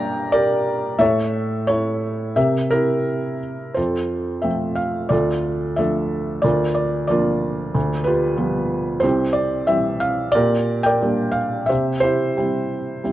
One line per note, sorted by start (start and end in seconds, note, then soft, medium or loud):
0.00 0.96 G2 medium
0.00 0.96 G3 medium
0.00 0.95 A#3 soft
0.00 0.96 D4 medium
0.00 0.34 A#4 medium
0.00 0.32 D5 medium
0.00 1.02 F5 medium
0.00 1.02 G5 medium
0.00 0.34 A#5 loud
0.32 0.97 G4 medium
0.32 0.96 A#4 medium
0.32 1.02 D5 medium
0.99 2.32 A2 medium
0.99 1.67 A4 medium
0.99 1.66 C#5 medium
0.99 1.63 E5 medium
1.67 2.33 E4 medium
1.67 2.33 A4 medium
1.67 2.32 C#5 medium
2.36 3.73 C3 medium
2.36 2.71 G4 soft
2.36 2.69 A#4 soft
2.36 3.38 E5 medium
2.71 3.74 E4 soft
2.71 3.73 G4 soft
2.71 3.80 A#4 medium
3.74 5.08 F2 soft
3.74 5.08 F4 soft
3.74 5.08 A4 soft
3.74 4.45 C5 medium
4.42 5.09 F3 soft
4.42 5.09 A3 soft
4.42 5.10 C4 soft
4.42 4.78 E5 medium
4.75 5.12 F5 medium
5.09 6.40 D2 soft
5.09 6.41 F4 medium
5.09 5.78 A4 soft
5.09 5.79 D5 medium
5.76 6.42 F3 soft
5.76 6.43 A3 soft
5.76 6.43 D4 soft
5.76 6.41 A4 soft
5.76 6.46 E5 medium
6.42 7.71 D2 medium
6.42 7.09 F4 soft
6.42 7.09 A#4 soft
6.42 6.73 D5 medium
6.75 7.06 D5 medium
7.07 7.72 F3 soft
7.07 7.72 A#3 soft
7.07 7.73 D4 soft
7.07 8.03 F4 medium
7.07 8.03 A#4 soft
7.07 8.08 D5 medium
7.75 8.99 D2 medium
8.04 8.99 F4 medium
8.04 9.00 G4 medium
8.04 8.98 B4 medium
8.37 9.00 F3 soft
8.37 9.01 G3 soft
8.37 9.01 B3 soft
9.00 10.30 C2 medium
9.00 9.67 C4 medium
9.00 10.31 G4 medium
9.00 9.35 C5 medium
9.33 9.68 D5 medium
9.67 10.32 E3 soft
9.67 10.33 G3 soft
9.67 10.33 C4 medium
9.67 10.02 E5 medium
10.00 10.35 F5 medium
10.32 11.66 A#2 medium
10.32 11.66 G4 medium
10.32 10.84 A#4 medium
10.32 10.85 D5 medium
10.83 11.66 A#4 medium
10.83 11.66 D5 medium
10.83 11.36 G5 medium
11.02 11.68 G3 soft
11.02 11.68 A#3 soft
11.02 11.68 D4 soft
11.32 11.69 F5 medium
11.66 13.12 C3 soft
11.66 12.02 G4 medium
11.66 11.99 C5 medium
11.66 12.03 E5 medium
12.00 12.36 E4 soft
12.00 13.12 G4 medium
12.00 13.12 C5 medium
12.37 13.02 G3 soft
12.37 13.03 C4 soft
12.37 13.03 E4 soft
13.04 13.12 G3 soft
13.04 13.12 C4 soft
13.04 13.12 E4 soft